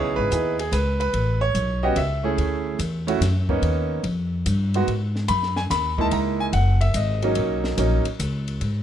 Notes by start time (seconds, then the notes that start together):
Already playing: C#3 B3 D#4 E4 G#4 C#5
0.03 B1
0.16 G#1 B4
0.31 D#2 B3 D#4 E4 G#4, kick, hi-hat pedal, ride
0.59 G#4, ride
0.72 C#2 B4, kick, hi-hat pedal, ride
1.00 B4, ride
1.13 A1, kick, ride
1.41 C#5
1.54 B1, kick, hi-hat pedal, ride
1.83 B3 C#4 F#4 G4 D#5
1.96 C#2 E5, kick, ride
2.23 A3 C#4 E4 G#4
2.38 D2, kick, ride
2.79 E2, kick, hi-hat pedal, ride
3.07 A3 C#4 E4 F#4, ride
3.20 F#2, kick, snare, hi-hat pedal, ride
3.49 A#3 B3 C#4 D#4, kick
3.62 D#2, kick, ride
4.03 F2, kick, ride
4.46 G2, kick, hi-hat pedal, ride
4.74 G#3 B3 D#4 F#4, ride
4.87 G#2, kick, ride
5.16 snare
5.28 F#2 B5, kick, hi-hat pedal, ride
5.43 snare
5.56 G#5, snare
5.70 D#2 B5, kick, snare, hi-hat pedal, ride
5.98 G#3 A#3 D#4 E4 A5, kick
6.11 C#2 A#5, kick, ride
6.40 G#5
6.53 F#1 F#5, kick, ride
6.81 E5, ride
6.94 G#1 D#5, kick, hi-hat pedal, ride
7.22 F#3 A#3 C#4 D#4, ride
7.35 B1, kick, ride
7.64 snare
7.77 A#1 F#3 A#3 C#4 D#4, kick, hi-hat pedal, ride
8.05 ride
8.19 C#2, kick, hi-hat pedal, ride
8.48 ride
8.61 G#2, kick, ride